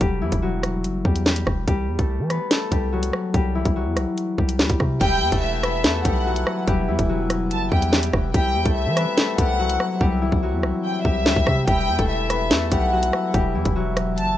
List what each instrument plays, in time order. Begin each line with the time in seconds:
Already playing: harp F#3 A3 B3 A4 B4
0.01 808-style bass E1, harp G3 G4, kick, closed hi-hat
0.22 808-style bass E2, harp E3 E4
0.32 808-style bass E1, kick, closed hi-hat
0.42 harp F#3 F#4
0.63 cross-stick, closed hi-hat
0.84 808-style bass F#1, closed hi-hat
1.05 808-style bass E2, harp G3 G4, kick
1.16 closed hi-hat
1.26 harp G3 G4, snare
1.36 closed hi-hat
1.47 808-style bass E1, kick, cross-stick
1.68 808-style bass C2, harp G3 G4, kick, closed hi-hat
1.88 808-style bass E2
1.99 808-style bass C2, harp A3 A4, kick, closed hi-hat
2.19 808-style bass E3
2.30 harp B3 B4, cross-stick, closed hi-hat
2.51 harp A3 A4, snare, closed hi-hat
2.72 808-style bass C2, harp G3 G4, kick, closed hi-hat
2.93 harp F#3 F#4
3.03 closed hi-hat
3.13 cross-stick
3.34 808-style bass C2, harp G3 G4, kick, closed hi-hat
3.55 harp E3 E4
3.65 808-style bass C2, kick, closed hi-hat
3.76 harp F#3 F#4
3.86 808-style bass E2
3.97 808-style bass C2, cross-stick, closed hi-hat
4.18 closed hi-hat
4.38 808-style bass C2, harp G3 G4, kick
4.49 closed hi-hat
4.59 808-style bass D2, harp G3 G4, snare
4.70 808-style bass C2, kick, closed hi-hat
4.80 808-style bass C3, kick, cross-stick
5.01 808-style bass E1, harmonium E3 B3 E4, harp G3 G4, violin section G5, kick, closed hi-hat, crash
5.22 808-style bass E2
5.32 808-style bass E1, harp A3 A4, kick, closed hi-hat
5.42 violin section E5
5.63 harp B3 B4, cross-stick, closed hi-hat
5.84 808-style bass E2, harp A3 A4, snare, closed hi-hat
6.05 808-style bass B1, harp G3 G4, violin section F#5, kick, closed hi-hat
6.26 harp F#3 F#4
6.36 closed hi-hat
6.47 cross-stick
6.67 808-style bass E1, harp G3 G4, kick, closed hi-hat
6.88 808-style bass E2, harp E3 E4
6.99 808-style bass E1, kick, closed hi-hat
7.09 harp F#3 F#4
7.30 cross-stick, closed hi-hat
7.51 808-style bass F#1, violin section A5, closed hi-hat
7.72 808-style bass E2, harp G3 G4, violin section G5, kick
7.82 closed hi-hat
7.92 harp G3 G4, snare
8.03 closed hi-hat
8.13 808-style bass E1, kick, cross-stick
8.34 808-style bass C2, harmonium C3 E4, harp G3 G4, violin section G5, kick, closed hi-hat
8.55 808-style bass E2
8.65 808-style bass C2, harp A3 A4, kick, closed hi-hat
8.76 violin section E5
8.86 808-style bass E3
8.97 harp B3 B4, cross-stick, closed hi-hat
9.18 harp A3 A4, snare, closed hi-hat
9.38 808-style bass C2, harp G3 G4, violin section F#5, kick, closed hi-hat
9.59 harp F#3 F#4
9.70 closed hi-hat
9.80 cross-stick
10.01 808-style bass C2, harp G3 G4, kick
10.22 harp E3 E4
10.32 808-style bass C2, kick
10.43 harp F#3 F#4
10.53 808-style bass E2
10.63 808-style bass C2, cross-stick
10.84 violin section G5
11.05 808-style bass C2, harp G3 G4, violin section E5, kick
11.26 808-style bass D2, harp G3 G4, snare
11.36 808-style bass C2, kick
11.47 808-style bass C3, kick, cross-stick
11.67 808-style bass E1, harmonium E3 E4, harp G3 G4, violin section G5, kick, closed hi-hat
11.88 808-style bass E2
11.99 808-style bass E1, harp A3 A4, kick, closed hi-hat
12.09 violin section E5
12.30 harp B3 B4, cross-stick, closed hi-hat
12.51 808-style bass E2, harp A3 A4, snare, closed hi-hat
12.72 808-style bass B1, harp G3 G4, violin section F#5, kick, closed hi-hat
12.93 harp F#3 F#4
13.03 closed hi-hat
13.13 cross-stick
13.34 808-style bass E1, harp G3 G4, kick, closed hi-hat
13.55 808-style bass E2, harp E3 E4
13.65 808-style bass E1, kick, closed hi-hat
13.76 harp F#3 F#4
13.97 cross-stick, closed hi-hat
14.17 808-style bass F#1, violin section A5, closed hi-hat